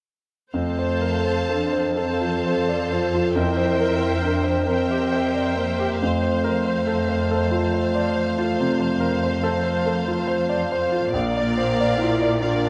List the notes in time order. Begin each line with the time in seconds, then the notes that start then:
0.54 F2 A3 A4 C5 F5 A5
0.79 C5
1.01 A#4
1.25 C5
1.49 D4 A4
1.73 C5
1.97 C4 A4 C5 F5 A5
2.20 F4
2.46 C5
2.69 D5
2.92 F4 C5
3.14 F4
3.36 F2 E4 A#4 C5 E5 G5
3.57 C5
3.80 A#4
4.00 C5
4.22 D4 A#4
4.44 C5
4.66 C4 A#4 C5 E5 G5
4.91 G4
5.12 C5
5.34 D5
5.57 A#3 C5
5.79 G4
5.99 F2 A3 C5 F5
6.23 C5
6.44 A#4
6.65 C5
6.87 A4
7.09 C5
7.31 A4
7.51 F4
7.74 C5
7.95 D5
8.15 C5
8.38 F4
8.60 C3
8.80 C5
9.00 A#4
9.23 C5
9.43 A4
9.63 C5
9.86 A4
10.07 F4
10.27 C5
10.49 D5
10.72 C5
10.92 F4
11.13 A#1 A#2 A#3 A#4 D5 F5
11.37 D5
11.58 C5
11.80 D5
11.99 E4 F4
12.22 D5
12.42 D4 F4 A#4 D5 F5
12.65 D4